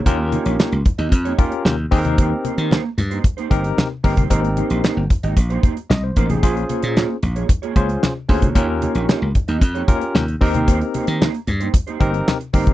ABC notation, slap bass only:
X:1
M:4/4
L:1/16
Q:1/4=113
K:Cphr
V:1 name="Slap bass" clef=bass
E,,3 B,,, z D,, z E,, F,,2 z2 E,,2 E,,2- | E,,2 z E,2 z G,,2 z2 G,,,2 z2 G,,,2 | A,,,3 B,,, z G,,, z A,,, B,,,2 z2 C,,2 =A,,,2 | B,,,2 z B,,2 z B,,,2 z2 D,,2 z2 =D,,2 |
E,,3 B,,, z D,, z E,, F,,2 z2 E,,2 E,,2- | E,,2 z E,2 z G,,2 z2 G,,,2 z2 G,,,2 |]